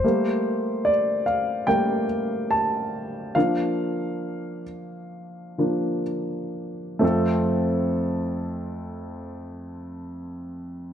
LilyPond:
<<
  \new Staff \with { instrumentName = "Grand piano" } { \time 4/4 \key f \major \tempo 4 = 66 c''4 d''8 f''8 g''4 a''4 | f''2. r4 | <a c' f' a'>1 | }
  \new Staff \with { instrumentName = "Grand piano" } { \time 4/4 \key f \major <g a bes>2 <g a bes>8 r4. | <f bes d'>4. r4 <f bes d'>8 r4 | f,1 | }
>>